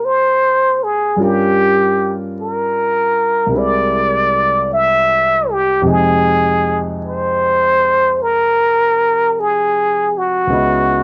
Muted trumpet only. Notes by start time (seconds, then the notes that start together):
0.05 C5
0.83 G#4
1.24 G4
2.41 A#4
3.58 D5
4.73 E5
5.51 G4
5.90 G#4
7.06 C5
8.22 A#4
9.40 G#4
10.18 F#4